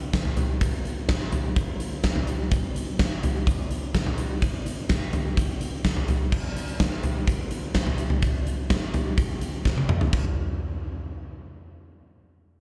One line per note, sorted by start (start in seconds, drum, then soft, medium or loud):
0.13 kick medium
0.13 snare medium
0.13 closed hi-hat medium
0.25 floor tom medium
0.37 closed hi-hat medium
0.37 floor tom medium
0.61 kick medium
0.61 closed hi-hat medium
0.85 closed hi-hat medium
1.09 kick loud
1.09 snare loud
1.09 closed hi-hat medium
1.32 closed hi-hat medium
1.32 floor tom medium
1.56 kick loud
1.56 closed hi-hat medium
1.80 closed hi-hat medium
2.03 kick medium
2.03 snare medium
2.03 closed hi-hat medium
2.16 floor tom medium
2.27 closed hi-hat medium
2.51 kick medium
2.51 closed hi-hat medium
2.76 closed hi-hat medium
2.99 kick loud
2.99 snare loud
2.99 closed hi-hat medium
3.23 closed hi-hat medium
3.23 floor tom medium
3.47 kick medium
3.47 closed hi-hat medium
3.71 closed hi-hat medium
3.94 kick medium
3.94 snare medium
3.94 closed hi-hat medium
4.07 floor tom medium
4.18 closed hi-hat medium
4.42 kick medium
4.42 closed hi-hat medium
4.66 closed hi-hat medium
4.89 kick loud
4.89 snare loud
4.89 closed hi-hat medium
5.13 closed hi-hat medium
5.13 floor tom medium
5.37 kick medium
5.37 closed hi-hat medium
5.61 closed hi-hat medium
5.84 kick medium
5.84 snare medium
5.84 closed hi-hat medium
5.97 floor tom medium
6.08 closed hi-hat medium
6.08 floor tom medium
6.32 kick medium
6.32 crash medium
6.57 closed hi-hat medium
6.68 closed hi-hat soft
6.80 kick loud
6.80 snare loud
6.80 closed hi-hat medium
7.03 closed hi-hat medium
7.03 floor tom medium
7.28 kick medium
7.28 closed hi-hat medium
7.51 closed hi-hat medium
7.74 kick medium
7.74 snare loud
7.74 closed hi-hat medium
7.87 floor tom medium
7.98 closed hi-hat medium
8.10 floor tom medium
8.22 kick loud
8.22 closed hi-hat loud
8.47 closed hi-hat medium
8.70 kick loud
8.70 snare loud
8.70 closed hi-hat medium
8.94 closed hi-hat medium
8.94 floor tom medium
9.18 kick loud
9.18 closed hi-hat medium
9.41 closed hi-hat medium
9.65 kick medium
9.65 snare medium
9.78 high tom medium
9.89 mid tom medium
10.01 floor tom medium
10.13 kick loud
10.13 crash medium